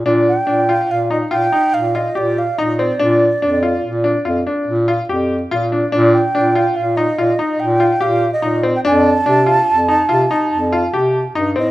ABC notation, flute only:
X:1
M:7/4
L:1/16
Q:1/4=144
K:Eblyd
V:1 name="Flute"
z2 g6 f2 e2 g4 f2 e2 d2 f2 e2 d2- | d8- d2 z16 z2 | z2 g6 f2 e6 g4 f3 e4 g | a24 z2 e2 |]